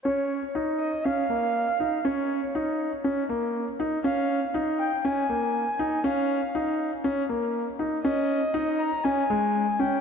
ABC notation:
X:1
M:4/4
L:1/8
Q:1/4=120
K:Bbdor
V:1 name="Violin"
d2 z e f4 | d3 z4 z | f2 z g a4 | f3 z4 z |
e3 b a3 g |]
V:2 name="Grand piano"
D2 E2 D B,2 E | D2 E2 D B,2 E | D2 E2 D B,2 E | D2 E2 D B,2 E |
D2 E2 D A,2 D |]